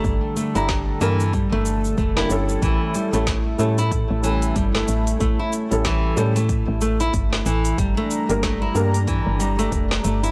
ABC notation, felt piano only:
X:1
M:4/4
L:1/16
Q:"Swing 16ths" 1/4=93
K:none
V:1 name="Felt piano"
[G,D_b]3 [G,Db]3 [G,_B,D_B] z6 [G,B,DB] [G,^CEA]2- | [G,^CEA]3 [G,CEA] z2 [G,CEA] z3 [G,CEA]6- | [G,^CEA]3 [G,CEA]3 [G,CEA] z8 z | z3 [G,_B,D_B] z2 [G,B,DB] z3 [G,D_b]6 |]